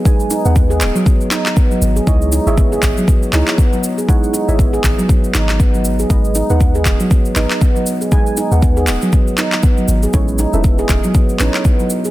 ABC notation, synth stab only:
X:1
M:4/4
L:1/16
Q:"Swing 16ths" 1/4=119
K:G#phr
V:1 name="Synth stab"
[B,DGBg]3 [B,DGBf]12- [B,DGBf] | [DEGcd]3 [EGcde]6- [EGcde] [DEGcd]6 | [DEGcf]3 [EGcde]12- [EGcde] | [B,DGBd]3 [B,DGBf]6- [B,DGBf] [B,DGBd]6 |
[B,DGBg]3 [B,DGBf]12- [B,DGBf] | [CEABc]3 [CEABe]6- [CEABe] [CEABc]6 |]